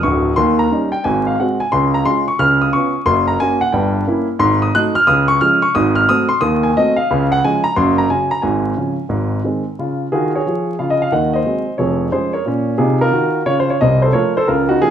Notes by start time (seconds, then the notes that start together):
0.03 D1 D2 C#6
0.36 D#2 D#3 C6
0.59 A#5
0.72 G3 C#4 D#4
0.92 G5
1.04 G#1 G#2 G#5
1.27 F5
1.40 G#3 C4 F#4 F#5
1.60 G#5
1.72 C#2 C#3 C6
1.94 A#5
2.05 G#3 C#4 F4 C6
2.28 C#6
2.39 C#2 C#3 F6
2.62 D#6
2.73 B3 C#4 F4 C#6
3.06 F#1 F#2 C6
3.28 A#5
3.40 A#3 C#4 F#4 G#5
3.61 F#5
3.72 G1 G2 G5
4.07 A#3 C#4 E4
4.39 G#1 G#2 C6
4.62 D#6
4.75 F#3 A3 D#4 F#6
4.95 F6
5.07 C#2 C#3 D#6
5.28 C#6
5.41 F3 G#3 C#4 F6
5.62 C#6
5.75 G#1 G#2 D#6
5.95 F6
6.09 F#3 A3 C4 D#6
6.29 C6
6.41 D#2 D#3 D#6
6.63 G#5
6.77 F#3 A3 C4 D#5
6.96 F5
7.11 C#2 C#3
7.32 F#5
7.44 F3 G#3 C#4 G#5
7.64 A#5
7.76 F#1 F#2 C6
7.98 A#5
8.10 C#3 F#3 C#4 G#5
8.31 A#5
8.42 G#1 G#2 G#5
8.76 C#3 F3 C#4
9.09 G#1 G#2
9.44 D#3 G#3 C4
9.79 C#3 F4
10.12 D#3 F4 F#4 G#4
10.36 G#4 C#5
10.47 F3 G#4
10.79 C#3 F4 F5
10.90 D#5
11.02 F5
11.12 D#2 D#3 D#5 F#5
11.33 C5 D#5
11.45 F#3 G#3 C4
11.78 F1 F2 G#4 C#5
12.12 F3 G#3 C#4 G#4 C5
12.33 A#4 C#5
12.46 A#2 C#4
12.78 C3 D#4 F4 G#4
13.01 F4 A#4
13.11 D#3 F#4
13.46 C#3 F4 C#5
13.60 C5
13.70 C#5
13.81 C2 C3 C5 D#5
14.02 A4 C5
14.13 F3 A3 F4 A#4 C#5
14.37 A4 C5
14.48 C#2 C#3 F4 A#4
14.69 D#4 F#4
14.82 F3 A#3 C#4 F4 G#4